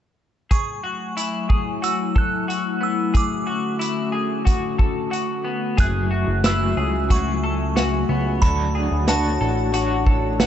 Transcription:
0.51 ambient pad F#3 A3 E4 G#5, clean electric guitar G#4, synth bell C#6, kick, closed hi-hat
0.84 clean electric guitar F#4
1.17 clean electric guitar E4, closed hi-hat
1.49 clean electric guitar G#4, kick
1.82 clean electric guitar F#4, synth bell E6, closed hi-hat
2.15 clean electric guitar A4, synth bell F#6, kick
2.48 clean electric guitar F#4, closed hi-hat
2.81 clean electric guitar B3, synth bell E6
3.14 ambient pad D3 C#4 F#4, clean electric guitar G#4, synth bell D6, kick, closed hi-hat
3.47 clean electric guitar F#4
3.79 clean electric guitar E4, closed hi-hat
4.12 clean electric guitar G#4
4.45 clean electric guitar F#4, kick, closed hi-hat
4.78 clean electric guitar A4, kick
5.11 clean electric guitar F#4, closed hi-hat
5.45 clean electric guitar B3
5.77 analog synth bass F#1, clean electric guitar F#3 A3 E4 G#4, ambient pad A3 F#4 E5 G#5, synth bell F#6, kick, closed hi-hat
6.11 clean electric guitar F#4
6.28 analog synth bass F#1
6.44 clean electric guitar F#3 A3 E4 G#4, synth bell E6, snare, closed hi-hat
6.77 analog synth bass C#2, clean electric guitar G#4
7.09 clean electric guitar F#3 A3 F#4, synth bell C#6, kick, closed hi-hat
7.14 clean electric guitar E4 G#4
7.44 clean electric guitar A4
7.76 clean electric guitar F#4, snare, closed hi-hat
8.09 analog synth bass C#2, clean electric guitar B3
8.42 analog synth bass D2, clean electric guitar D3 F#3 A3 D4 F#4 A4 C#5, ambient pad D4 F#4 C#5 F#5, synth bell B5, kick, closed hi-hat
8.75 clean electric guitar G#4
8.92 analog synth bass D2
9.07 clean electric guitar A3 D4 F#4 C#5, synth bell A5, snare, closed hi-hat
9.41 analog synth bass A1, clean electric guitar A4
9.72 clean electric guitar A3 D4 F#4, closed hi-hat
9.78 clean electric guitar F#4 C#5
10.06 clean electric guitar A4, kick
10.40 clean electric guitar F#4, snare, closed hi-hat

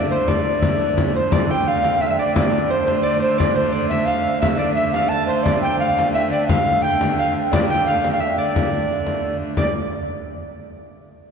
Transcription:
Already playing: hurdy-gurdy D3 A3, harp C5 D5 E5
0.10 recorder C5, harp C5
0.28 harp D5, recorder D5, frame drum
0.46 frame drum
0.62 frame drum
0.80 frame drum
0.98 frame drum
1.15 recorder C5, harp C5, frame drum
1.32 hurdy-gurdy D3 A3, harp D5, recorder D5, frame drum
1.50 harp G5, recorder G5
1.67 recorder F5, harp F5
1.84 harp F5, frame drum
2.01 recorder E5, harp E5, frame drum
2.07 recorder E5 F5, harp E5
2.19 harp D5, recorder D5, frame drum
2.35 harp D5, recorder D5, frame drum
2.52 harp D5
2.70 harp C5, recorder C5
2.86 harp C5, frame drum
3.03 recorder D5, harp D5, frame drum
3.20 harp C5, recorder C5, frame drum
3.38 harp D5, recorder D5, frame drum
3.55 harp C5, recorder C5
3.72 harp D5, recorder D5
3.89 recorder E5, harp E5, frame drum
4.05 recorder F5, harp F5, frame drum
4.25 frame drum
4.41 recorder E5, harp E5, frame drum
4.55 recorder D5 E5, harp D5
4.74 recorder E5, harp E5
4.92 recorder F5, frame drum
4.96 harp F5
5.09 recorder A5, harp A5, frame drum
5.26 recorder C5, harp C5, frame drum
5.43 hurdy-gurdy D3, recorder D5, frame drum
5.48 hurdy-gurdy A3, harp D5
5.61 recorder G5, harp G5
5.79 recorder F5, harp F5
5.99 frame drum
6.14 recorder E5, harp E5, frame drum
6.31 recorder D5, frame drum
6.47 recorder F5, harp F5, frame drum
6.82 recorder G5, harp G5
7.01 frame drum
7.17 recorder F5, harp F5, frame drum
7.36 frame drum
7.51 recorder D5, harp D5, frame drum
7.68 recorder G5, harp G5
7.86 recorder F5, harp F5
8.04 frame drum
8.12 recorder F5, harp F5
8.20 harp E5, recorder E5, frame drum
8.38 harp D5, recorder D5, frame drum
8.56 frame drum
9.07 frame drum
9.41 frame drum
9.57 harp D5, recorder D5, frame drum

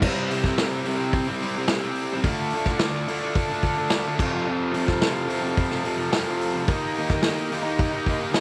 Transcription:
0.02 distorted electric guitar C3 G3 C4, transistor combo organ E4 G4 C5, kick, crash
0.30 distorted electric guitar C3 G3 C4, open hi-hat
0.44 distorted electric guitar G3 C4, kick, snare
0.57 distorted electric guitar C3 G3 C4, snare, open hi-hat
0.85 distorted electric guitar C3 G3 C4, open hi-hat
0.97 distorted electric guitar G3 C4
1.13 kick, open hi-hat
1.28 distorted electric guitar G3 C4
1.41 distorted electric guitar C3 G3 C4, open hi-hat
1.56 distorted electric guitar G3 C4
1.68 distorted electric guitar C3 G3 C4, snare, open hi-hat
1.85 distorted electric guitar G3 C4
1.95 open hi-hat
2.13 distorted electric guitar G3 C4
2.24 distorted electric guitar D3 A3, transistor combo organ F4 A4 D5, kick, open hi-hat
2.28 distorted electric guitar D4
2.50 distorted electric guitar D3, open hi-hat
2.55 distorted electric guitar A3 D4
2.65 distorted electric guitar A3 D4, kick, snare
2.79 distorted electric guitar D3 A3 D4, snare, open hi-hat
3.08 distorted electric guitar D3 A3 D4, open hi-hat
3.22 distorted electric guitar A3 D4
3.35 kick, open hi-hat
3.49 distorted electric guitar A3 D4
3.62 distorted electric guitar D3 A3 D4, kick, open hi-hat
3.76 distorted electric guitar A3 D4
3.90 distorted electric guitar D3 A3 D4, snare, open hi-hat
4.04 distorted electric guitar A3 D4
4.17 distorted electric guitar F2 C3 F3, transistor combo organ F4 C5, kick, crash
4.22 transistor combo organ A4
4.33 distorted electric guitar C3 F3
4.46 distorted electric guitar F2 C3 F3
4.72 distorted electric guitar F2 C3 F3, open hi-hat
4.85 distorted electric guitar C3 F3, kick, snare
5.00 distorted electric guitar F2 C3 F3, snare, open hi-hat
5.26 distorted electric guitar F2 C3 F3, open hi-hat
5.41 distorted electric guitar C3 F3
5.57 kick, open hi-hat
5.69 distorted electric guitar C3 F3, snare
5.83 distorted electric guitar F2 C3 F3, open hi-hat
5.96 distorted electric guitar C3 F3
6.11 distorted electric guitar F2 C3 F3, snare, open hi-hat
6.26 distorted electric guitar C3 F3
6.41 open hi-hat
6.55 distorted electric guitar C3 F3
6.68 distorted electric guitar D#3 A#3, transistor combo organ G4 A#4 D#5, kick, open hi-hat
6.72 distorted electric guitar D#4
6.95 distorted electric guitar D#3 A#3, open hi-hat
7.00 distorted electric guitar D#4
7.09 distorted electric guitar D#4, kick, snare
7.13 distorted electric guitar A#3
7.22 distorted electric guitar D#3 A#3 D#4, snare, open hi-hat
7.51 distorted electric guitar D#3 A#3 D#4, open hi-hat
7.63 distorted electric guitar D#4
7.67 distorted electric guitar A#3
7.79 kick, open hi-hat
7.91 distorted electric guitar A#3 D#4
8.06 distorted electric guitar D#3 A#3 D#4, kick, open hi-hat
8.20 distorted electric guitar A#3 D#4
8.32 distorted electric guitar D#3 A#3 D#4, snare, open hi-hat

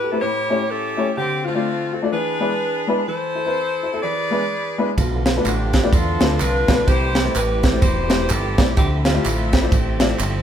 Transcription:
Already playing: saxophone section E4 G4
0.02 upright piano G4 A4
0.11 upright piano A3 C4 E4 G4 B4, saxophone section A4
0.20 upright piano A2, saxophone section E4 G4 C#5
0.50 upright piano A3 C#4 E4 G4 C#5
0.69 saxophone section C#4 E4 A4
0.97 upright piano A3 C#4 E4 G4 C#5
1.17 upright piano D3, saxophone section C4 G4
1.45 saxophone section A3 C4 F4, upright piano F4 C5
1.54 upright piano A3 C4 D4 F4 C5
1.92 upright piano F4 C5, saxophone section A4
2.02 upright piano A3 C4 D4 F4 D5
2.12 upright piano E3, saxophone section D4 G#4 B4
2.40 upright piano G#3 B3 D4 E4 B4
2.87 upright piano G#3 B3 D4 E4 B4
3.08 upright piano E3, saxophone section E4 A4 C5
3.35 upright piano E4 A4
3.45 upright piano C4 E4 B4
3.83 upright piano E4 C5
3.92 upright piano C4 E4 A4
4.02 upright piano E3, saxophone section G#4 B4 D5
4.31 upright piano G#3 B3 D4 E4 B4
4.78 upright piano G#3 B3 D4 E4 B4
4.96 fingered electric bass B1, upright piano B2, tonewheel organ C#3 F3 A3 B3 F4, kick, ride bell, tambourine
5.03 tonewheel organ D3
5.26 upright piano F4 B4, snare, ride bell, tambourine
5.36 upright piano A3 B3 D4 F4 B4
5.45 fingered electric bass A1, saxophone section D4 G4, clap, ride bell, tambourine
5.73 upright piano F4 G4, kick, snare, ride bell, tambourine
5.82 upright piano A3 B3 D4 F4 D5
5.93 fingered electric bass E2, saxophone section D4 F4 A4, kick, ride bell, tambourine
6.20 fingered electric bass D2, upright piano A3 B3 D4 F4 B4, snare, ride bell, tambourine
6.40 fingered electric bass C2, saxophone section D4 F4 B4, clap, ride bell, tambourine
6.67 fingered electric bass B1, upright piano A3 B3 D4 F4 B4, kick, snare, ride bell, tambourine
6.86 fingered electric bass C2, upright piano C3, tonewheel organ E3 G3 A3 C4 G4, saxophone section E4 G4 C5, kick, ride bell, tambourine
7.15 upright piano G4 C5, snare, ride bell, tambourine
7.24 upright piano A3 C4 E4 G4 C5, saxophone section A4
7.35 fingered electric bass A1, saxophone section E4 G4 B4, clap, ride bell, tambourine
7.61 upright piano G4 C5, kick, snare, ride bell, tambourine
7.72 upright piano A3 C4 E4 G4 C5, saxophone section A4
7.82 fingered electric bass E1, saxophone section E4 G4 C5, kick, ride bell, tambourine
8.09 upright piano A3 C4 E4 G4 C5, snare, ride bell, tambourine
8.30 fingered electric bass G1, saxophone section E4 A4, clap, ride bell, tambourine
8.58 fingered electric bass B1, upright piano A3 C4 E4 G4 D5, kick, snare, ride bell, tambourine
8.77 fingered electric bass D2, upright piano D3, tonewheel organ D3 E3 A3 C4 E5, saxophone section C4 E4 G4, kick, ride bell, tambourine
8.83 tonewheel organ F3
9.04 saxophone section A3 C4 F4, upright piano F4 C5, snare, ride bell, tambourine
9.14 upright piano A3 D4 E4 F4 G4
9.25 fingered electric bass A1, clap, ride bell, tambourine
9.52 upright piano F4 C5, saxophone section A4, kick, snare, ride bell, tambourine
9.61 upright piano A3 D4 E4 F4 C5
9.72 fingered electric bass A1, saxophone section C4 E4 G4, kick, ride bell, tambourine
10.00 upright piano A3 D4 E4 F4 D5, snare, ride bell, tambourine
10.20 fingered electric bass G1, clap, ride bell, tambourine

